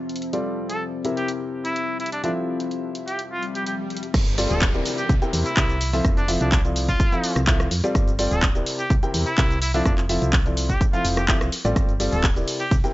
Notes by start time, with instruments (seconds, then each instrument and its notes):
Already playing: grand piano F3 C4 E4 F4 A4 E5, ambient pad F3 C4 E5 A5
0.09 closed hi-hat
0.16 closed hi-hat
0.22 closed hi-hat
0.33 grand piano G3 C4 F4 G4 A4 D5, closed hi-hat
0.66 ambient pad G4, trumpet A4, closed hi-hat
1.05 grand piano C3 C4 E4 G4 A#4 E5, closed hi-hat
1.17 trumpet G4, closed hi-hat
1.28 closed hi-hat
1.59 ambient pad E5
1.65 trumpet E4, closed hi-hat
1.76 closed hi-hat
2.00 trumpet E4, closed hi-hat
2.06 closed hi-hat
2.12 trumpet D4, closed hi-hat
2.24 grand piano F3 C4 E4 F4 A4 E5, trumpet D4, closed hi-hat
2.60 closed hi-hat
2.71 closed hi-hat
2.83 ambient pad F3
2.95 closed hi-hat
3.08 trumpet G4, closed hi-hat
3.19 closed hi-hat, swell
3.31 trumpet F4
3.43 closed hi-hat
3.55 trumpet G4, closed hi-hat
3.66 trumpet G4, closed hi-hat
3.90 closed hi-hat
3.97 closed hi-hat
4.03 closed hi-hat
4.14 fm bass G1, kick, cross-stick, closed hi-hat, crash, downlifter, shaker
4.27 closed hi-hat, shaker
4.38 grand piano G3 C4 F4 G4 A4 D5, open hi-hat, shaker
4.50 fm bass D1, trumpet A4, closed hi-hat, shaker
4.62 kick, clap, closed hi-hat, shaker
4.74 grand piano C3 C4 E4 G4 A#4 D5, closed hi-hat, shaker
4.85 open hi-hat, shaker
4.98 trumpet G4, closed hi-hat, shaker
5.09 fm bass C2, kick, closed hi-hat, shaker
5.22 grand piano C3 C4 E4 G4 A#4 G5, closed hi-hat, shaker
5.33 fm bass E2, open hi-hat, shaker
5.46 trumpet E4, closed hi-hat, shaker
5.57 fm bass C2, grand piano C3 C4 E4 G4 A#4 E5, kick, clap, closed hi-hat, shaker
5.70 closed hi-hat, shaker
5.81 open hi-hat, shaker
5.93 grand piano F3 C4 E4 F4 A4 E5, open hi-hat, shaker
6.05 fm bass F1, kick, cross-stick, closed hi-hat, shaker
6.17 trumpet D4, closed hi-hat, shaker
6.28 grand piano F3 C4 E4 F4 A4 E5, open hi-hat, shaker
6.41 fm bass C2, trumpet D4, closed hi-hat, shaker
6.52 trumpet D4, kick, clap, closed hi-hat, shaker
6.65 grand piano F3 C4 E4 F4 A4 D5, closed hi-hat, shaker
6.76 open hi-hat, shaker
6.89 trumpet F4, kick, closed hi-hat, shaker
7.00 kick, closed hi-hat, shaker
7.12 grand piano F3 C4 E4 F4 A4 F5, closed hi-hat, shaker
7.24 open hi-hat, shaker
7.36 fm bass C2, cross-stick, closed hi-hat, shaker
7.47 grand piano F3 C4 E4 F4 A4 E5, kick, clap, closed hi-hat, shaker
7.60 cross-stick, closed hi-hat, shaker
7.71 fm bass F2, open hi-hat, shaker
7.84 grand piano G3 C4 F4 G4 A4 D5, closed hi-hat, shaker
7.95 fm bass G1, kick, cross-stick, closed hi-hat, shaker
8.08 closed hi-hat, shaker
8.19 grand piano G3 C4 F4 G4 A4 D5, open hi-hat, shaker
8.31 fm bass D1, trumpet A4, closed hi-hat, shaker
8.43 kick, clap, closed hi-hat, shaker
8.55 grand piano C3 C4 E4 G4 A#4 D5, closed hi-hat, shaker
8.66 open hi-hat, shaker
8.79 trumpet G4, closed hi-hat, shaker
8.90 fm bass C2, kick, closed hi-hat, shaker
9.03 grand piano C3 C4 E4 G4 A#4 G5, closed hi-hat, shaker
9.14 fm bass E2, open hi-hat, shaker
9.27 trumpet E4, closed hi-hat, shaker
9.38 fm bass C2, grand piano C3 C4 E4 G4 A#4 E5, kick, clap, closed hi-hat, shaker
9.50 closed hi-hat, shaker
9.62 trumpet E4, open hi-hat, shaker
9.74 grand piano F3 C4 E4 F4 A4 E5, trumpet D4, open hi-hat, shaker
9.85 fm bass F1, trumpet D4, kick, cross-stick, closed hi-hat, shaker
9.98 clap, closed hi-hat, shaker
10.09 grand piano F3 C4 E4 F4 A4 E5, open hi-hat, shaker
10.22 fm bass C2, closed hi-hat, shaker
10.33 kick, clap, closed hi-hat, shaker
10.46 grand piano F3 C4 E4 F4 A4 D5, closed hi-hat, shaker
10.57 open hi-hat, shaker
10.70 trumpet G4, kick, closed hi-hat, shaker
10.81 kick, closed hi-hat, shaker
10.93 grand piano F3 C4 E4 F4 A4 F5, trumpet F4, closed hi-hat, shaker
11.05 fm bass F1, open hi-hat, shaker
11.17 trumpet G4, cross-stick, closed hi-hat, shaker
11.28 grand piano F3 C4 E4 F4 A4 E5, trumpet G4, kick, clap, closed hi-hat, shaker
11.41 fm bass C2, cross-stick, closed hi-hat, shaker
11.52 open hi-hat, shaker
11.65 fm bass A1, grand piano G3 C4 F4 G4 A4 D5, closed hi-hat, shaker
11.76 fm bass G1, kick, cross-stick, closed hi-hat, shaker
11.89 closed hi-hat, shaker
12.00 grand piano G3 C4 F4 G4 A4 D5, open hi-hat, ride, shaker
12.12 fm bass D1, trumpet A4, closed hi-hat, shaker
12.24 kick, clap, closed hi-hat, shaker
12.36 grand piano C3 C4 E4 G4 A#4 D5, closed hi-hat, shaker
12.48 open hi-hat, ride, shaker
12.60 trumpet G4, closed hi-hat, shaker
12.71 fm bass C2, kick, closed hi-hat, shaker
12.84 grand piano C3 C4 E4 G4 A#4 G5, closed hi-hat, shaker